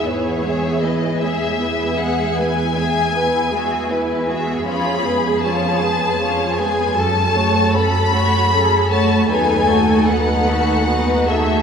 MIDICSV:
0, 0, Header, 1, 6, 480
1, 0, Start_track
1, 0, Key_signature, 4, "major"
1, 0, Tempo, 767263
1, 46, Time_signature, 12, 3, 24, 8
1, 4847, Tempo, 783290
1, 7222, End_track
2, 0, Start_track
2, 0, Title_t, "Violin section"
2, 0, Program_c, 0, 48
2, 39, Note_on_c, 0, 73, 52
2, 518, Note_on_c, 0, 75, 47
2, 523, Note_off_c, 0, 73, 0
2, 761, Note_off_c, 0, 75, 0
2, 761, Note_on_c, 0, 76, 60
2, 1232, Note_off_c, 0, 76, 0
2, 1241, Note_on_c, 0, 78, 56
2, 1477, Note_on_c, 0, 80, 70
2, 1485, Note_off_c, 0, 78, 0
2, 2676, Note_off_c, 0, 80, 0
2, 2922, Note_on_c, 0, 83, 63
2, 3375, Note_off_c, 0, 83, 0
2, 3400, Note_on_c, 0, 81, 68
2, 4118, Note_on_c, 0, 80, 63
2, 4127, Note_off_c, 0, 81, 0
2, 4362, Note_off_c, 0, 80, 0
2, 4367, Note_on_c, 0, 81, 75
2, 4840, Note_on_c, 0, 83, 88
2, 4847, Note_off_c, 0, 81, 0
2, 5558, Note_off_c, 0, 83, 0
2, 5563, Note_on_c, 0, 81, 67
2, 5794, Note_off_c, 0, 81, 0
2, 5799, Note_on_c, 0, 80, 75
2, 6266, Note_off_c, 0, 80, 0
2, 6273, Note_on_c, 0, 78, 75
2, 7002, Note_off_c, 0, 78, 0
2, 7010, Note_on_c, 0, 76, 64
2, 7222, Note_off_c, 0, 76, 0
2, 7222, End_track
3, 0, Start_track
3, 0, Title_t, "Violin section"
3, 0, Program_c, 1, 48
3, 44, Note_on_c, 1, 71, 37
3, 47, Note_off_c, 1, 71, 0
3, 47, Note_on_c, 1, 71, 38
3, 269, Note_off_c, 1, 71, 0
3, 288, Note_on_c, 1, 68, 35
3, 289, Note_on_c, 1, 76, 34
3, 522, Note_on_c, 1, 71, 36
3, 528, Note_off_c, 1, 68, 0
3, 528, Note_off_c, 1, 76, 0
3, 763, Note_off_c, 1, 71, 0
3, 766, Note_on_c, 1, 76, 32
3, 767, Note_on_c, 1, 68, 37
3, 999, Note_on_c, 1, 71, 34
3, 1004, Note_off_c, 1, 76, 0
3, 1005, Note_off_c, 1, 68, 0
3, 1225, Note_off_c, 1, 71, 0
3, 1242, Note_on_c, 1, 68, 36
3, 1242, Note_on_c, 1, 76, 36
3, 1484, Note_on_c, 1, 71, 36
3, 1485, Note_off_c, 1, 68, 0
3, 1485, Note_off_c, 1, 76, 0
3, 1487, Note_off_c, 1, 71, 0
3, 1487, Note_on_c, 1, 71, 42
3, 1727, Note_off_c, 1, 71, 0
3, 1731, Note_on_c, 1, 68, 37
3, 1731, Note_on_c, 1, 76, 37
3, 1966, Note_off_c, 1, 68, 0
3, 1966, Note_off_c, 1, 76, 0
3, 1967, Note_on_c, 1, 71, 38
3, 1968, Note_off_c, 1, 71, 0
3, 1968, Note_on_c, 1, 71, 36
3, 2187, Note_off_c, 1, 71, 0
3, 2201, Note_on_c, 1, 68, 36
3, 2202, Note_on_c, 1, 76, 36
3, 2441, Note_off_c, 1, 68, 0
3, 2441, Note_off_c, 1, 76, 0
3, 2446, Note_on_c, 1, 71, 35
3, 2447, Note_off_c, 1, 71, 0
3, 2447, Note_on_c, 1, 71, 34
3, 2684, Note_off_c, 1, 71, 0
3, 2684, Note_on_c, 1, 68, 38
3, 2684, Note_on_c, 1, 76, 37
3, 2922, Note_off_c, 1, 68, 0
3, 2922, Note_off_c, 1, 76, 0
3, 2925, Note_on_c, 1, 65, 44
3, 2925, Note_on_c, 1, 73, 42
3, 3145, Note_off_c, 1, 65, 0
3, 3146, Note_off_c, 1, 73, 0
3, 3163, Note_on_c, 1, 71, 34
3, 3165, Note_on_c, 1, 68, 37
3, 3401, Note_off_c, 1, 71, 0
3, 3402, Note_off_c, 1, 68, 0
3, 3407, Note_on_c, 1, 65, 36
3, 3407, Note_on_c, 1, 73, 35
3, 3644, Note_off_c, 1, 65, 0
3, 3644, Note_off_c, 1, 73, 0
3, 3646, Note_on_c, 1, 71, 40
3, 3648, Note_on_c, 1, 68, 39
3, 3885, Note_on_c, 1, 65, 39
3, 3886, Note_on_c, 1, 73, 36
3, 3887, Note_off_c, 1, 71, 0
3, 3888, Note_off_c, 1, 68, 0
3, 4110, Note_off_c, 1, 65, 0
3, 4110, Note_off_c, 1, 73, 0
3, 4128, Note_on_c, 1, 71, 41
3, 4130, Note_on_c, 1, 68, 40
3, 4366, Note_on_c, 1, 69, 46
3, 4367, Note_off_c, 1, 69, 0
3, 4367, Note_off_c, 1, 71, 0
3, 4367, Note_on_c, 1, 69, 44
3, 4368, Note_off_c, 1, 68, 0
3, 4589, Note_off_c, 1, 69, 0
3, 4604, Note_on_c, 1, 66, 42
3, 4608, Note_on_c, 1, 73, 46
3, 4846, Note_off_c, 1, 66, 0
3, 4848, Note_off_c, 1, 73, 0
3, 4854, Note_on_c, 1, 69, 43
3, 4857, Note_off_c, 1, 69, 0
3, 4857, Note_on_c, 1, 69, 39
3, 5086, Note_on_c, 1, 66, 40
3, 5088, Note_on_c, 1, 73, 42
3, 5090, Note_off_c, 1, 69, 0
3, 5325, Note_off_c, 1, 66, 0
3, 5325, Note_on_c, 1, 69, 42
3, 5326, Note_off_c, 1, 69, 0
3, 5326, Note_off_c, 1, 73, 0
3, 5326, Note_on_c, 1, 69, 46
3, 5546, Note_off_c, 1, 69, 0
3, 5557, Note_on_c, 1, 73, 42
3, 5558, Note_on_c, 1, 66, 40
3, 5793, Note_on_c, 1, 63, 49
3, 5793, Note_on_c, 1, 71, 49
3, 5796, Note_off_c, 1, 66, 0
3, 5796, Note_off_c, 1, 73, 0
3, 6016, Note_off_c, 1, 63, 0
3, 6016, Note_off_c, 1, 71, 0
3, 6032, Note_on_c, 1, 69, 42
3, 6033, Note_on_c, 1, 66, 42
3, 6271, Note_on_c, 1, 63, 39
3, 6272, Note_on_c, 1, 71, 43
3, 6273, Note_off_c, 1, 69, 0
3, 6274, Note_off_c, 1, 66, 0
3, 6515, Note_off_c, 1, 63, 0
3, 6515, Note_off_c, 1, 71, 0
3, 6520, Note_on_c, 1, 69, 41
3, 6522, Note_on_c, 1, 66, 42
3, 6760, Note_on_c, 1, 63, 42
3, 6761, Note_off_c, 1, 69, 0
3, 6762, Note_on_c, 1, 71, 45
3, 6763, Note_off_c, 1, 66, 0
3, 6986, Note_off_c, 1, 63, 0
3, 6986, Note_off_c, 1, 71, 0
3, 7004, Note_on_c, 1, 69, 45
3, 7006, Note_on_c, 1, 66, 45
3, 7222, Note_off_c, 1, 66, 0
3, 7222, Note_off_c, 1, 69, 0
3, 7222, End_track
4, 0, Start_track
4, 0, Title_t, "Cello section"
4, 0, Program_c, 2, 48
4, 43, Note_on_c, 2, 68, 47
4, 750, Note_off_c, 2, 68, 0
4, 762, Note_on_c, 2, 68, 43
4, 2174, Note_off_c, 2, 68, 0
4, 2206, Note_on_c, 2, 66, 45
4, 2442, Note_on_c, 2, 64, 45
4, 2443, Note_off_c, 2, 66, 0
4, 2682, Note_off_c, 2, 64, 0
4, 2682, Note_on_c, 2, 66, 43
4, 2918, Note_on_c, 2, 68, 56
4, 2921, Note_off_c, 2, 66, 0
4, 4339, Note_off_c, 2, 68, 0
4, 4366, Note_on_c, 2, 69, 52
4, 5084, Note_on_c, 2, 66, 48
4, 5085, Note_off_c, 2, 69, 0
4, 5321, Note_on_c, 2, 68, 55
4, 5324, Note_off_c, 2, 66, 0
4, 5555, Note_off_c, 2, 68, 0
4, 5558, Note_on_c, 2, 69, 56
4, 6514, Note_on_c, 2, 71, 50
4, 6515, Note_off_c, 2, 69, 0
4, 6757, Note_on_c, 2, 66, 57
4, 6758, Note_off_c, 2, 71, 0
4, 6996, Note_off_c, 2, 66, 0
4, 6998, Note_on_c, 2, 68, 61
4, 7222, Note_off_c, 2, 68, 0
4, 7222, End_track
5, 0, Start_track
5, 0, Title_t, "Viola section"
5, 0, Program_c, 3, 48
5, 36, Note_on_c, 3, 59, 39
5, 38, Note_on_c, 3, 64, 33
5, 264, Note_off_c, 3, 59, 0
5, 265, Note_off_c, 3, 64, 0
5, 285, Note_on_c, 3, 56, 34
5, 285, Note_on_c, 3, 59, 37
5, 517, Note_off_c, 3, 59, 0
5, 524, Note_on_c, 3, 64, 31
5, 525, Note_on_c, 3, 59, 33
5, 526, Note_off_c, 3, 56, 0
5, 753, Note_off_c, 3, 59, 0
5, 760, Note_on_c, 3, 59, 34
5, 762, Note_on_c, 3, 56, 39
5, 765, Note_off_c, 3, 64, 0
5, 992, Note_off_c, 3, 59, 0
5, 999, Note_on_c, 3, 59, 33
5, 1002, Note_off_c, 3, 56, 0
5, 1002, Note_on_c, 3, 64, 36
5, 1225, Note_off_c, 3, 59, 0
5, 1226, Note_off_c, 3, 64, 0
5, 1239, Note_on_c, 3, 56, 34
5, 1239, Note_on_c, 3, 59, 35
5, 1478, Note_off_c, 3, 59, 0
5, 1484, Note_off_c, 3, 56, 0
5, 1484, Note_on_c, 3, 64, 37
5, 1485, Note_on_c, 3, 59, 32
5, 1714, Note_off_c, 3, 59, 0
5, 1721, Note_on_c, 3, 59, 36
5, 1724, Note_on_c, 3, 56, 34
5, 1726, Note_off_c, 3, 64, 0
5, 1954, Note_off_c, 3, 59, 0
5, 1961, Note_on_c, 3, 59, 38
5, 1963, Note_off_c, 3, 56, 0
5, 1963, Note_on_c, 3, 64, 41
5, 2183, Note_off_c, 3, 59, 0
5, 2184, Note_off_c, 3, 64, 0
5, 2200, Note_on_c, 3, 56, 42
5, 2200, Note_on_c, 3, 59, 38
5, 2427, Note_off_c, 3, 59, 0
5, 2435, Note_on_c, 3, 59, 34
5, 2436, Note_on_c, 3, 64, 37
5, 2440, Note_off_c, 3, 56, 0
5, 2668, Note_off_c, 3, 59, 0
5, 2676, Note_on_c, 3, 59, 37
5, 2677, Note_on_c, 3, 56, 38
5, 2679, Note_off_c, 3, 64, 0
5, 2918, Note_off_c, 3, 59, 0
5, 2918, Note_on_c, 3, 61, 37
5, 2919, Note_off_c, 3, 56, 0
5, 2919, Note_on_c, 3, 53, 42
5, 3142, Note_off_c, 3, 53, 0
5, 3142, Note_off_c, 3, 61, 0
5, 3157, Note_on_c, 3, 56, 36
5, 3159, Note_on_c, 3, 59, 39
5, 3398, Note_off_c, 3, 56, 0
5, 3399, Note_off_c, 3, 59, 0
5, 3402, Note_on_c, 3, 53, 36
5, 3404, Note_on_c, 3, 61, 36
5, 3641, Note_on_c, 3, 56, 38
5, 3642, Note_off_c, 3, 53, 0
5, 3642, Note_on_c, 3, 59, 38
5, 3643, Note_off_c, 3, 61, 0
5, 3884, Note_off_c, 3, 56, 0
5, 3885, Note_off_c, 3, 59, 0
5, 3888, Note_on_c, 3, 61, 41
5, 3889, Note_on_c, 3, 53, 43
5, 4111, Note_off_c, 3, 61, 0
5, 4112, Note_off_c, 3, 53, 0
5, 4127, Note_on_c, 3, 59, 42
5, 4128, Note_on_c, 3, 56, 39
5, 4361, Note_on_c, 3, 54, 41
5, 4361, Note_on_c, 3, 61, 42
5, 4367, Note_off_c, 3, 56, 0
5, 4367, Note_off_c, 3, 59, 0
5, 4586, Note_off_c, 3, 54, 0
5, 4586, Note_off_c, 3, 61, 0
5, 4601, Note_on_c, 3, 57, 38
5, 4602, Note_off_c, 3, 57, 0
5, 4602, Note_on_c, 3, 57, 43
5, 4839, Note_on_c, 3, 54, 45
5, 4840, Note_on_c, 3, 61, 43
5, 4845, Note_off_c, 3, 57, 0
5, 5081, Note_off_c, 3, 54, 0
5, 5082, Note_off_c, 3, 61, 0
5, 5085, Note_on_c, 3, 57, 46
5, 5087, Note_off_c, 3, 57, 0
5, 5087, Note_on_c, 3, 57, 45
5, 5323, Note_on_c, 3, 54, 37
5, 5325, Note_off_c, 3, 57, 0
5, 5325, Note_on_c, 3, 61, 43
5, 5545, Note_off_c, 3, 54, 0
5, 5545, Note_off_c, 3, 61, 0
5, 5567, Note_on_c, 3, 57, 39
5, 5568, Note_off_c, 3, 57, 0
5, 5568, Note_on_c, 3, 57, 44
5, 5801, Note_off_c, 3, 57, 0
5, 5801, Note_on_c, 3, 59, 42
5, 5802, Note_on_c, 3, 54, 43
5, 6020, Note_off_c, 3, 59, 0
5, 6021, Note_off_c, 3, 54, 0
5, 6037, Note_on_c, 3, 57, 44
5, 6038, Note_on_c, 3, 63, 41
5, 6276, Note_off_c, 3, 57, 0
5, 6276, Note_off_c, 3, 63, 0
5, 6276, Note_on_c, 3, 59, 43
5, 6277, Note_on_c, 3, 54, 44
5, 6517, Note_off_c, 3, 59, 0
5, 6517, Note_on_c, 3, 63, 46
5, 6518, Note_off_c, 3, 54, 0
5, 6519, Note_on_c, 3, 57, 44
5, 6760, Note_off_c, 3, 63, 0
5, 6761, Note_off_c, 3, 57, 0
5, 6762, Note_on_c, 3, 54, 44
5, 6764, Note_on_c, 3, 59, 43
5, 6987, Note_off_c, 3, 54, 0
5, 6988, Note_off_c, 3, 59, 0
5, 7009, Note_on_c, 3, 57, 43
5, 7011, Note_on_c, 3, 63, 40
5, 7222, Note_off_c, 3, 57, 0
5, 7222, Note_off_c, 3, 63, 0
5, 7222, End_track
6, 0, Start_track
6, 0, Title_t, "Double bass section"
6, 0, Program_c, 4, 48
6, 43, Note_on_c, 4, 40, 44
6, 2894, Note_off_c, 4, 40, 0
6, 2919, Note_on_c, 4, 41, 53
6, 4363, Note_on_c, 4, 42, 49
6, 4365, Note_off_c, 4, 41, 0
6, 5772, Note_off_c, 4, 42, 0
6, 5795, Note_on_c, 4, 39, 55
6, 7220, Note_off_c, 4, 39, 0
6, 7222, End_track
0, 0, End_of_file